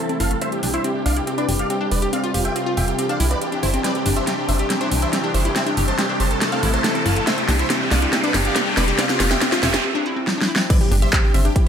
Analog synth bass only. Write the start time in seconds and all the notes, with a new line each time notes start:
0.20 G1
0.63 C2
1.06 C2
1.49 G1
1.91 F1
2.34 F1
2.77 F1
3.20 C2
3.63 G1
4.06 G1
4.49 G1
4.91 C2
5.34 G1
5.77 G1
6.20 G1
6.63 A1
7.06 G1
7.49 C2
7.91 C2
8.34 G1
8.77 F1
9.20 F1
9.63 F1
10.91 G1
11.34 G1